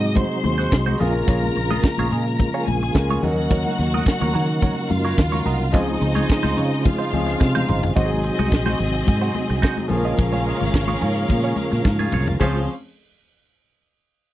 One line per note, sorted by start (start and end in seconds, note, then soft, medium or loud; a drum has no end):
0.00 0.22 G#2 loud
0.00 0.98 C3 medium
0.00 0.95 F#3 medium
0.00 0.98 F#3 medium
0.00 0.95 G#3 medium
0.00 3.19 G#3 medium
0.00 0.95 C4 medium
0.00 0.95 D#4 medium
0.00 0.96 D#4 medium
0.00 0.98 F#4 medium
0.00 0.96 G#4 medium
0.00 0.14 D#5 medium
0.00 0.14 D#6 medium
0.00 muted clean electric guitar stroke soft
0.04 closed hi-hat medium
0.15 0.38 D#4 medium
0.15 0.30 F#4 loud
0.15 0.98 C5 medium
0.15 0.29 C5 loud
0.15 0.98 C6 medium
0.15 kick loud
0.15 closed hi-hat medium
0.15 muted conga soft
0.15 high conga medium
0.15 low conga medium
0.30 muted clean electric guitar stroke soft
0.30 closed hi-hat soft
0.44 0.66 D#2 medium
0.44 muted clean electric guitar stroke soft
0.44 closed hi-hat medium
0.44 muted conga soft
0.44 high conga medium
0.58 0.70 D#4 soft
0.58 0.71 F#4 medium
0.58 0.71 C5 medium
0.58 snare soft
0.58 closed hi-hat soft
0.71 0.94 C2 loud
0.71 muted clean electric guitar stroke soft
0.71 kick loud
0.71 snare loud
0.71 muted conga soft
0.86 0.99 D#4 medium
0.86 1.00 F#4 medium
0.86 1.00 C5 medium
0.86 closed hi-hat soft
0.86 high conga medium
0.99 1.22 A#1 loud
0.99 7.92 C#3 medium
0.99 3.21 F3 medium
0.99 2.91 G#3 medium
0.99 2.91 A#3 medium
0.99 5.70 A#3 medium
0.99 1.07 C4 medium
0.99 1.21 F4 medium
0.99 3.21 F4 medium
0.99 2.92 F4 medium
0.99 1.14 G#4 medium
0.99 2.64 A#4 medium
0.99 2.92 A#4 medium
0.99 1.14 D#5 medium
0.99 2.64 A#5 medium
0.99 open hi-hat medium
0.99 muted conga soft
0.99 low conga medium
1.07 2.94 C#4 medium
1.13 muted clean electric guitar stroke medium
1.13 closed hi-hat medium
1.27 1.50 A#1 loud
1.27 1.49 F4 medium
1.27 1.43 G#4 loud
1.27 1.41 C#5 medium
1.27 kick loud
1.27 closed hi-hat loud
1.42 muted clean electric guitar stroke medium
1.42 closed hi-hat soft
1.42 high conga medium
1.55 1.78 A#1 medium
1.55 muted clean electric guitar stroke soft
1.55 closed hi-hat medium
1.55 muted conga soft
1.71 1.84 F4 medium
1.71 1.84 G#4 medium
1.71 1.85 D#5 medium
1.71 closed hi-hat soft
1.71 high conga medium
1.84 muted clean electric guitar stroke soft
1.84 kick loud
1.84 snare loud
1.98 2.09 A#1 medium
1.98 2.11 F4 medium
1.98 2.11 G#4 medium
1.98 2.12 C#5 medium
1.98 closed hi-hat medium
1.98 high conga medium
2.11 2.45 A#2 loud
2.11 2.29 F4 medium
2.11 2.26 G#4 medium
2.11 2.26 D#5 medium
2.11 closed hi-hat medium
2.11 muted conga soft
2.11 low conga medium
2.27 muted clean electric guitar stroke soft
2.27 closed hi-hat medium
2.38 muted clean electric guitar stroke soft
2.38 kick loud
2.38 closed hi-hat medium
2.38 high conga medium
2.38 low conga medium
2.54 2.67 F4 medium
2.54 2.67 G#4 medium
2.54 2.67 C#5 medium
2.54 closed hi-hat soft
2.67 2.89 A#1 medium
2.67 3.22 G#4 medium
2.67 3.22 G#5 medium
2.67 closed hi-hat medium
2.67 high conga medium
2.82 muted clean electric guitar stroke soft
2.82 closed hi-hat soft
2.94 3.17 C#2 loud
2.94 3.23 G#3 medium
2.94 3.22 A#3 medium
2.94 3.22 C#4 medium
2.94 3.23 F4 medium
2.94 3.23 A#4 medium
2.94 muted clean electric guitar stroke medium
2.94 kick loud
2.94 snare loud
2.94 muted conga soft
3.10 3.23 F4 medium
3.10 3.24 G#4 medium
3.10 3.24 C#5 medium
3.10 closed hi-hat soft
3.10 high conga medium
3.22 3.66 D#2 loud
3.22 5.42 F#3 medium
3.22 5.71 F#3 medium
3.22 5.42 A#3 medium
3.22 5.42 C#4 medium
3.22 7.92 D#4 medium
3.22 5.43 D#4 medium
3.22 4.87 F#4 medium
3.22 3.41 F#4 medium
3.22 5.71 A#4 medium
3.22 5.43 A#4 medium
3.22 3.36 C#5 medium
3.22 4.87 F#5 medium
3.22 open hi-hat medium
3.22 muted conga soft
3.22 low conga medium
3.36 muted clean electric guitar stroke soft
3.36 closed hi-hat soft
3.51 3.77 F#4 medium
3.51 3.77 A#4 loud
3.51 3.77 C#5 medium
3.51 kick loud
3.51 closed hi-hat medium
3.51 muted conga soft
3.65 closed hi-hat soft
3.65 high conga medium
3.78 4.01 D#2 loud
3.78 closed hi-hat medium
3.78 muted conga soft
3.94 4.05 F#4 medium
3.94 4.06 A#4 medium
3.94 4.07 D#5 medium
3.94 closed hi-hat medium
3.94 high conga medium
4.06 kick loud
4.06 snare loud
4.20 4.32 D#2 loud
4.20 4.32 F#4 soft
4.20 4.34 A#4 medium
4.20 4.34 C#5 medium
4.20 closed hi-hat medium
4.20 high conga medium
4.34 4.68 D#3 loud
4.34 4.56 F#4 loud
4.34 4.48 A#4 medium
4.34 4.47 C#5 loud
4.34 closed hi-hat medium
4.34 low conga medium
4.48 muted clean electric guitar stroke soft
4.48 closed hi-hat soft
4.61 4.84 F#4 medium
4.61 4.76 A#4 medium
4.61 4.75 C#5 medium
4.61 kick loud
4.61 closed hi-hat medium
4.61 muted conga soft
4.61 high conga medium
4.61 low conga medium
4.76 muted clean electric guitar stroke soft
4.76 closed hi-hat soft
4.90 5.12 F#2 loud
4.90 5.72 F4 medium
4.90 5.72 F5 medium
4.90 muted clean electric guitar stroke soft
4.90 closed hi-hat medium
4.90 muted conga soft
4.90 high conga medium
5.05 5.16 F#4 medium
5.05 5.17 A#4 medium
5.05 5.17 C#5 medium
5.05 snare soft
5.05 closed hi-hat soft
5.18 5.40 D#2 loud
5.18 kick loud
5.18 snare loud
5.32 5.44 F#4 soft
5.32 5.45 A#4 medium
5.32 5.46 C#5 medium
5.32 closed hi-hat soft
5.32 high conga medium
5.46 5.74 C2 loud
5.46 5.67 F#4 medium
5.46 5.60 A#4 loud
5.46 5.60 D#5 loud
5.46 open hi-hat medium
5.46 muted conga soft
5.46 low conga medium
5.59 muted clean electric guitar stroke medium
5.59 closed hi-hat medium
5.73 5.95 C#2 loud
5.73 7.10 F3 medium
5.73 7.94 G#3 medium
5.73 7.10 C4 medium
5.73 7.10 C#4 medium
5.73 6.82 D#4 medium
5.73 5.95 D#4 medium
5.73 7.11 D#4 medium
5.73 7.94 F4 medium
5.73 5.88 F4 loud
5.73 7.11 G#4 loud
5.73 7.94 C5 medium
5.73 5.87 C5 medium
5.73 6.82 D#5 medium
5.73 kick loud
5.73 closed hi-hat medium
5.73 muted conga soft
5.88 muted clean electric guitar stroke medium
5.88 closed hi-hat soft
5.88 high conga medium
6.00 6.23 C#2 loud
6.00 muted clean electric guitar stroke soft
6.00 closed hi-hat medium
6.00 muted conga soft
6.15 6.27 D#4 medium
6.15 6.28 F4 medium
6.15 6.29 C#5 medium
6.15 closed hi-hat soft
6.15 high conga medium
6.28 muted clean electric guitar stroke soft
6.28 kick loud
6.28 snare loud
6.43 6.54 C#2 loud
6.43 6.55 D#4 medium
6.43 6.56 F4 medium
6.43 6.57 C5 medium
6.43 closed hi-hat soft
6.43 high conga medium
6.56 6.90 C#3 loud
6.56 6.74 D#4 medium
6.56 6.71 F4 medium
6.56 6.70 C#5 medium
6.56 closed hi-hat medium
6.56 muted conga soft
6.56 low conga medium
6.74 closed hi-hat medium
6.84 7.94 F4 medium
6.84 7.94 F5 medium
6.84 muted clean electric guitar stroke soft
6.84 kick loud
6.84 closed hi-hat medium
6.84 muted conga soft
6.84 high conga medium
6.84 low conga medium
6.99 7.10 D#4 medium
6.99 7.11 F4 medium
6.99 7.11 C5 medium
6.99 closed hi-hat soft
7.11 7.34 C#2 medium
7.11 7.96 F3 medium
7.11 7.95 C4 medium
7.11 7.97 C#4 medium
7.11 7.96 D#4 medium
7.11 7.97 G#4 medium
7.11 muted clean electric guitar stroke soft
7.11 closed hi-hat medium
7.11 muted conga soft
7.11 high conga medium
7.27 muted clean electric guitar stroke soft
7.27 snare soft
7.27 closed hi-hat soft
7.40 7.62 C3 loud
7.40 muted clean electric guitar stroke medium
7.40 kick loud
7.40 snare medium
7.55 7.67 D#4 medium
7.55 7.68 F4 medium
7.55 7.68 C5 medium
7.55 high tom medium
7.55 high conga medium
7.68 7.90 G1 medium
7.68 7.86 D#4 medium
7.68 7.83 F4 medium
7.68 7.82 C5 medium
7.68 mid tom medium
7.68 muted conga soft
7.68 low conga medium
7.83 muted clean electric guitar stroke soft
7.83 floor tom loud
7.95 8.30 G#1 loud
7.95 9.89 C3 medium
7.95 9.87 F#3 medium
7.95 9.89 F#3 medium
7.95 9.89 G#3 medium
7.95 9.87 C4 medium
7.95 9.88 C4 medium
7.95 8.18 D#4 medium
7.95 9.89 D#4 medium
7.95 9.88 D#4 medium
7.95 8.11 F#4 loud
7.95 9.89 F#4 medium
7.95 8.04 F#4 medium
7.95 9.87 G#4 medium
7.95 8.10 C5 loud
7.95 9.87 D#5 medium
7.95 kick loud
7.95 closed hi-hat medium
7.95 muted conga soft
8.05 9.90 G#4 medium
8.10 muted clean electric guitar stroke medium
8.10 closed hi-hat soft
8.10 high conga medium
8.24 muted clean electric guitar stroke soft
8.24 closed hi-hat medium
8.24 muted conga soft
8.39 8.49 C2 loud
8.39 8.50 D#4 medium
8.39 8.50 F#4 medium
8.39 8.52 D#5 medium
8.39 closed hi-hat soft
8.39 high conga medium
8.51 8.74 A#1 loud
8.51 muted clean electric guitar stroke soft
8.51 kick loud
8.51 snare loud
8.66 8.79 D#4 medium
8.66 8.79 F#4 medium
8.66 8.79 C5 medium
8.66 closed hi-hat soft
8.66 high conga medium
8.79 9.01 G#1 medium
8.79 closed hi-hat medium
8.79 low conga medium
8.94 muted clean electric guitar stroke soft
8.94 closed hi-hat medium
9.06 9.29 G#2 loud
9.06 muted clean electric guitar stroke soft
9.06 kick loud
9.06 closed hi-hat medium
9.06 high conga medium
9.06 low conga medium
9.21 9.34 D#4 medium
9.21 9.34 F#4 medium
9.21 9.35 C5 medium
9.21 closed hi-hat soft
9.35 closed hi-hat medium
9.35 muted conga soft
9.35 high conga medium
9.50 9.60 C2 loud
9.50 muted clean electric guitar stroke medium
9.50 snare soft
9.50 closed hi-hat soft
9.62 9.84 D#4 medium
9.62 9.78 F#4 medium
9.62 9.77 C5 medium
9.62 kick loud
9.62 snare loud
9.62 muted conga soft
9.77 muted clean electric guitar stroke soft
9.77 closed hi-hat soft
9.77 high conga medium
9.88 10.12 A#1 loud
9.88 12.38 C#3 medium
9.88 12.08 F3 medium
9.88 12.38 F3 medium
9.88 12.38 G#3 medium
9.88 12.08 A#3 medium
9.88 12.38 A#3 medium
9.88 12.09 C#4 medium
9.88 12.37 C#4 medium
9.88 12.38 F4 medium
9.88 12.09 G#4 medium
9.88 12.37 A#4 medium
9.88 12.37 F5 medium
9.88 muted clean electric guitar stroke soft
9.88 open hi-hat medium
9.88 low conga medium
10.05 10.17 F4 medium
10.05 10.18 G#4 medium
10.05 10.19 D#5 medium
10.05 closed hi-hat soft
10.18 10.52 A#1 loud
10.18 muted clean electric guitar stroke soft
10.18 kick loud
10.18 closed hi-hat loud
10.18 muted conga soft
10.32 10.45 F4 medium
10.32 10.45 G#4 medium
10.32 10.47 C#5 medium
10.32 closed hi-hat soft
10.32 high conga medium
10.45 10.64 F4 medium
10.45 10.61 G#4 medium
10.45 10.60 D#5 medium
10.45 closed hi-hat medium
10.61 10.72 G#1 loud
10.61 muted clean electric guitar stroke medium
10.61 closed hi-hat soft
10.61 high conga medium
10.74 10.96 G#1 loud
10.74 muted clean electric guitar stroke soft
10.74 kick loud
10.74 snare loud
10.74 muted conga soft
10.87 11.00 F4 soft
10.87 11.00 G#4 medium
10.87 11.01 C#5 medium
10.87 closed hi-hat soft
10.87 high conga medium
11.01 11.24 G#2 medium
11.01 11.23 F4 medium
11.01 11.16 G#4 medium
11.01 11.15 C#5 loud
11.01 closed hi-hat medium
11.01 low conga medium
11.16 muted clean electric guitar stroke soft
11.16 closed hi-hat medium
11.28 11.52 A#2 medium
11.28 muted clean electric guitar stroke soft
11.28 kick loud
11.28 closed hi-hat medium
11.28 high conga medium
11.28 low conga medium
11.44 11.56 F4 medium
11.44 11.57 G#4 medium
11.44 11.57 C#5 medium
11.44 closed hi-hat soft
11.56 muted clean electric guitar stroke soft
11.56 closed hi-hat medium
11.56 muted conga soft
11.56 high conga medium
11.72 11.83 A#2 medium
11.72 muted clean electric guitar stroke soft
11.72 snare soft
11.72 closed hi-hat soft
11.84 12.07 G#2 loud
11.84 muted clean electric guitar stroke soft
11.84 kick loud
11.84 snare medium
11.84 muted conga soft
11.99 12.12 F4 soft
11.99 12.12 G#4 medium
11.99 12.13 C#5 medium
11.99 high conga medium
12.12 12.35 C2 loud
12.12 12.35 F4 medium
12.12 12.28 G#4 medium
12.12 12.27 C#5 medium
12.12 mid tom medium
12.12 low conga medium
12.27 muted clean electric guitar stroke soft
12.27 floor tom loud
12.40 12.67 C#2 medium
12.40 12.67 C#3 medium
12.40 12.66 F3 medium
12.40 12.67 F3 medium
12.40 12.67 G#3 medium
12.40 12.66 C4 medium
12.40 12.67 C4 medium
12.40 12.66 C#4 medium
12.40 12.58 C#4 medium
12.40 12.58 F4 medium
12.40 12.67 F4 medium
12.40 12.66 G#4 medium
12.40 12.66 C5 medium
12.40 12.59 C5 medium
12.40 12.67 F5 medium
12.40 kick loud
12.40 open hi-hat medium
12.40 high conga medium